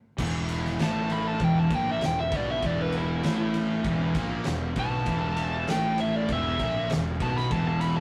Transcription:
0.17 E1 E2 E3 E4 B4 G5, kick, crash
0.49 ride
0.65 snare
0.79 A1 A2 A3 A5, snare, ride
1.10 B5, ride
1.29 A5
1.40 E1 E2 E3, kick, ride
1.44 G5
1.60 A5
1.71 A#1 A#2 A#3, kick, ride
1.75 G5
1.92 E5
2.01 E1 E2, snare, ride
2.05 G5
2.20 E5
2.32 B1 B2 B3, kick, ride
2.36 D5
2.51 E5
2.62 E1 E2 E3 D5, kick, ride
2.82 B4
2.92 ride
2.97 E4
3.23 A1 A2 A3, snare, ride
3.54 ride
3.85 E1 E2 E3, kick, ride
4.15 A#1 A#2 A#3, kick, ride
4.44 E1 E2, snare, ride
4.76 B1 B2 B3 A5, kick, ride
5.05 E1 E2 E3 A4, kick, ride
5.37 ride
5.67 A1 A2 A3 G5, snare, ride
5.98 E5, ride
6.16 D5
6.28 E1 E2 E3 E5, kick, ride
6.60 A#1 A#2 A#3, kick, ride
6.90 E1 E2, snare, ride
7.20 B1 B2 B3 A5, kick, ride
7.37 B5, snare
7.51 E1 E2 E3 A5, kick, ride
7.68 A5
7.81 B5, ride
7.97 A5

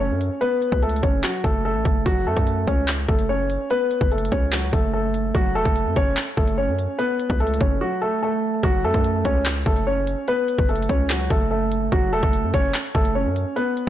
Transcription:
Already playing: F#1
0.00 C#4 C#5
0.11 F#2
0.21 closed hi-hat
0.41 B3 B4, closed hi-hat
0.62 closed hi-hat
0.72 C#2, kick
0.82 A3 A4, closed hi-hat
0.89 closed hi-hat
0.96 closed hi-hat
1.03 F#1 C#4 C#5, kick, closed hi-hat
1.24 F#3 F#4, clap, closed hi-hat
1.44 F#1 A3 A4, kick, closed hi-hat
1.65 A3 A4
1.75 A1
1.85 F#1, kick, closed hi-hat
2.06 F#1 F#3 F#4, kick, closed hi-hat
2.26 F#2 A3 A4
2.37 F#2, kick, closed hi-hat
2.47 closed hi-hat
2.67 C#2 C#4 C#5, kick, closed hi-hat
2.88 clap, closed hi-hat
3.08 F#1 A3 A4, kick
3.19 closed hi-hat
3.29 C#4 C#5
3.50 closed hi-hat
3.70 B3 B4, closed hi-hat
3.91 closed hi-hat
4.01 F#1, kick
4.11 A3 A4, closed hi-hat
4.18 closed hi-hat
4.25 closed hi-hat
4.32 C#2 C#4 C#5, kick, closed hi-hat
4.52 F#3 F#4, clap, closed hi-hat
4.73 F#1 A3 A4, kick, closed hi-hat
4.93 A3 A4
5.14 closed hi-hat
5.35 F#1 F#3 F#4, kick, closed hi-hat
5.55 E1 A3 A4
5.65 F#1, kick, closed hi-hat
5.76 closed hi-hat
5.86 F#2
5.96 F#1 C#4 C#5, kick, closed hi-hat
6.17 clap, closed hi-hat
6.37 F#1 A3 A4, kick
6.48 closed hi-hat
6.58 C#4 C#5
6.68 F#2
6.79 closed hi-hat
6.99 B3 B4, closed hi-hat
7.20 closed hi-hat
7.30 C#2, kick
7.40 A3 A4, closed hi-hat
7.47 closed hi-hat
7.54 closed hi-hat
7.61 F#1 C#4 C#5, kick, closed hi-hat
7.81 F#3 F#4
8.02 A3 A4
8.23 A3 A4
8.63 F#1 F#3 F#4, kick, closed hi-hat
8.84 F#2 A3 A4
8.94 F#2, kick, closed hi-hat
9.04 closed hi-hat
9.25 C#2 C#4 C#5, kick, closed hi-hat
9.46 clap, closed hi-hat
9.66 F#1 A3 A4, kick
9.76 closed hi-hat
9.87 C#4 C#5
10.07 closed hi-hat
10.28 B3 B4, closed hi-hat
10.48 closed hi-hat
10.58 F#1, kick
10.69 A3 A4, closed hi-hat
10.76 closed hi-hat
10.83 closed hi-hat
10.89 C#2 C#4 C#5, kick, closed hi-hat
11.10 F#3 F#4, clap, closed hi-hat
11.30 F#1 A3 A4, kick, closed hi-hat
11.51 A3 A4
11.72 closed hi-hat
11.92 F#1 F#3 F#4, kick, closed hi-hat
12.13 E1 A3 A4
12.23 F#1, kick, closed hi-hat
12.33 closed hi-hat
12.43 F#2
12.54 F#1 C#4 C#5, kick, closed hi-hat
12.74 clap, closed hi-hat
12.95 F#1 A3 A4, kick
13.05 closed hi-hat
13.15 C#4 C#5
13.26 F#2
13.36 closed hi-hat
13.56 B3 B4, closed hi-hat
13.77 closed hi-hat

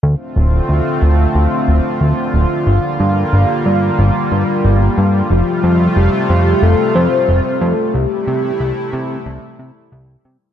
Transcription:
0.03 D2 D3 A3 C4 F4
0.36 D1
0.69 D2
1.02 D1
1.35 D2
1.68 D1
2.01 D2
2.34 D1
2.67 G1 G3 A#3
3.00 G2
3.33 G1
3.66 G2
3.99 G1
4.32 G2
4.65 G1
4.98 G2
5.30 F1 C3 A3 F4
5.64 F2
5.96 F1 G4
6.30 F2
6.62 F1 A4
6.95 F2 C5
7.29 F1
7.61 F2 A4
7.94 C2 C3 A3 E4 G4
8.27 C3
8.60 C2
8.93 C3
9.26 C2
9.59 C3
9.92 C2
10.25 C3

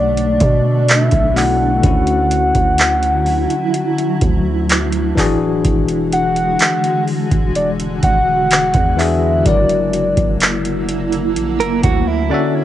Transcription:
Already playing: B1 B2 D3 A3 D4 D5
0.17 closed hi-hat
0.40 B2, kick, closed hi-hat
0.89 E5, clap, closed hi-hat
1.11 B1, kick, closed hi-hat
1.34 B2 A3 D4 F#5, clap, open hi-hat
1.39 E4
1.82 D2 D3 F#3 C#4 E4, kick, closed hi-hat
1.86 F#4
2.07 closed hi-hat
2.31 closed hi-hat
2.55 D2, kick, closed hi-hat
2.78 clap, closed hi-hat
3.03 closed hi-hat
3.26 open hi-hat
3.50 closed hi-hat
3.74 closed hi-hat
3.98 closed hi-hat
4.21 D2, kick, closed hi-hat
4.69 clap, closed hi-hat
4.92 closed hi-hat
5.15 D1 D3 E3 G#3 D4 F#4, kick, clap, open hi-hat
5.20 G#4
5.65 E1, kick, closed hi-hat
5.89 closed hi-hat
6.13 F#5, closed hi-hat
6.36 closed hi-hat
6.59 clap, closed hi-hat
6.84 closed hi-hat
7.08 open hi-hat
7.31 E1, kick, closed hi-hat
7.55 D5, closed hi-hat
7.80 closed hi-hat
8.03 E1 F#5, kick, closed hi-hat
8.51 clap, closed hi-hat
8.74 E2, kick, closed hi-hat
8.96 E3 D4 F#4 E5, clap, open hi-hat
9.01 G#4
9.44 F#1 D3 F#3 A#3 E4 A#4 D5, kick, closed hi-hat
9.49 D5
9.69 closed hi-hat
9.93 closed hi-hat
10.17 F#1, kick, closed hi-hat
10.40 clap, closed hi-hat
10.65 closed hi-hat
10.89 closed hi-hat
11.12 closed hi-hat
11.36 A#1, closed hi-hat
11.60 F#1 A#4, closed hi-hat
11.83 D2 F#4, kick, closed hi-hat
12.07 E4
12.30 D3 E3 C#4 D4 F#4
12.34 E5
12.55 C#4

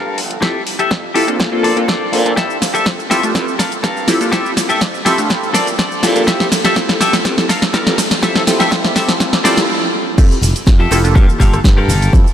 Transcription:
Already playing: G2 A4 A#4 F5
0.18 G1, open hi-hat
0.31 closed hi-hat
0.42 F2 C4 E4 F4 G4 A4 E5, kick, snare, closed hi-hat
0.67 F1, open hi-hat
0.79 G4 A4 E5, muted fingered electric bass stroke, closed hi-hat
0.91 F2, kick, snare, closed hi-hat
1.03 muted clean electric guitar stroke
1.14 F1 C4 E4 F4 G4 A4 E5, open hi-hat
1.27 A#3 C4 D4 F4 A4, closed hi-hat
1.39 A#1, muted clean electric guitar stroke, kick, snare, closed hi-hat
1.52 A#3 C4 D4 F4 A4
1.63 A#2 A4 C5 D5, open hi-hat
1.76 A#3 C4 D4 F4 A4, closed hi-hat
1.88 A4 C5 D5, kick, snare, closed hi-hat
2.12 A#2 A#3 C4 D4 F4 A4, open hi-hat
2.25 A#3 C4 D4 F4 A4, closed hi-hat
2.36 F2 C4 E4 F4 G4 A4 E5, kick, snare, closed hi-hat, shaker
2.50 shaker
2.62 F1, snare, open hi-hat, shaker
2.74 G4 A4 E5, closed hi-hat, shaker
2.86 F2, kick, snare, closed hi-hat, shaker
2.98 muted clean electric guitar stroke, shaker
3.10 F1 C4 E4 F4 G4 A4 E5, snare, open hi-hat, shaker
3.23 A3 D4 F4 G4 A4, closed hi-hat, shaker
3.34 G2 C4 E4 F4 G4 A4, muted clean electric guitar stroke, kick, snare, closed hi-hat, shaker
3.48 shaker
3.59 G1 A4 A#4 F5, kick, snare, open hi-hat, shaker
3.72 closed hi-hat, shaker
3.83 G2 A4 A#4 F5, kick, snare, closed hi-hat, shaker
3.97 shaker
4.08 G1 C4 E4 F4 G4 A4, snare, open hi-hat, shaker
4.21 A#3 D4 F4 G4 A4, closed hi-hat, shaker
4.32 F2 C4 E4 F4 G4 A4 E5, kick, snare, closed hi-hat, shaker
4.46 shaker
4.57 F1, snare, open hi-hat, shaker
4.69 G4 A4 E5, closed hi-hat, shaker
4.81 F2, kick, snare, closed hi-hat, shaker
4.94 muted clean electric guitar stroke, shaker
5.05 C4 E4 F4 G4 A4 E5, snare, open hi-hat, shaker
5.18 A3 D4 F4 G4 A4, closed hi-hat, shaker
5.29 A#1 C4 E4 F4 G4 A4, muted clean electric guitar stroke, kick, snare, closed hi-hat, shaker
5.43 shaker
5.54 A#2 A4 C5 D5, snare, open hi-hat, shaker
5.67 closed hi-hat, shaker
5.79 A#1 A4 C5 D5, kick, snare, closed hi-hat, shaker
5.92 shaker
6.03 A#2 C4 E4 F4 G4 A4, snare, open hi-hat, shaker
6.16 A#3 D4 F4 G4 A4, closed hi-hat, shaker
6.27 F2 C4 G4 A4 E5, kick, snare, closed hi-hat, shaker
6.40 snare, shaker
6.52 F1, snare, open hi-hat, shaker
6.65 G4 A4 E5, snare, closed hi-hat, shaker
6.76 F2 C4 E4 F4 G4 A4, kick, snare, closed hi-hat, shaker
6.89 muted clean electric guitar stroke, snare, shaker
7.01 G4 A4 E5, snare, open hi-hat, shaker
7.13 snare, closed hi-hat, shaker
7.24 G2 C4 E4 F4 G4 A4, muted clean electric guitar stroke, kick, snare, closed hi-hat, shaker
7.38 snare, shaker
7.49 G1 A4 A#4 F5, kick, snare, open hi-hat, shaker
7.62 snare, closed hi-hat, shaker
7.73 G2 C4 E4 F4 G4 A4 A#4 F5, kick, snare, closed hi-hat, shaker
7.87 snare, shaker
7.98 G1, snare, open hi-hat, shaker
8.11 snare, closed hi-hat, shaker
8.22 F2 C4 E4 F4 G4 A4 E5, kick, snare, closed hi-hat, shaker
8.36 snare, shaker
8.47 C4 E4 F4 G4 A4, snare, open hi-hat, shaker
8.60 G4 A4 E5, snare, closed hi-hat, shaker
8.71 F2 C4 E4 F4 G4 A4, kick, snare, closed hi-hat, shaker
8.84 muted clean electric guitar stroke, snare, shaker
8.95 C4 E4 F4 G4 A4 E5, kick, snare, open hi-hat, shaker
9.09 snare, closed hi-hat, shaker
9.20 A#1 C4 E4 F4 G4 A4, muted clean electric guitar stroke, kick, snare, closed hi-hat, shaker
9.33 snare, shaker
9.44 A#2 C4 E4 F4 G4 A4 C5 D5, snare, open hi-hat, shaker
9.57 snare, closed hi-hat, shaker
10.18 F2 C4 E4 F4 G4 A4, kick, closed hi-hat, crash, tambourine, shaker
10.31 tambourine, shaker
10.42 F1, open hi-hat, ride, tambourine, low conga, shaker
10.55 closed hi-hat, tambourine, shaker
10.66 F2, kick, snare, closed hi-hat, tambourine, shaker
10.79 F4 G4 A4 E5, tambourine
10.91 F1 C4 E4 F4 G4 A4, cross-stick, open hi-hat, ride, tambourine, shaker
11.04 A#3 D4 F4 G4 A4, closed hi-hat, tambourine, shaker
11.15 G2 G4 A4 A#4 F5, kick, closed hi-hat, tambourine, shaker
11.29 tambourine, high conga, shaker
11.40 G1 A#3 D4 F4 G4 A4 A#4 F5, kick, open hi-hat, ride, tambourine, low conga, shaker
11.53 cross-stick, closed hi-hat, tambourine, high conga, shaker
11.64 G2, kick, snare, closed hi-hat, tambourine, shaker
11.77 G4 A4 A#4 F5, cross-stick, tambourine
11.88 G1, open hi-hat, ride, tambourine, high conga, low conga, shaker
12.02 closed hi-hat, tambourine, shaker
12.13 F2 C4 E4 F4 G4 A4, kick, closed hi-hat, tambourine, shaker
12.26 tambourine, shaker

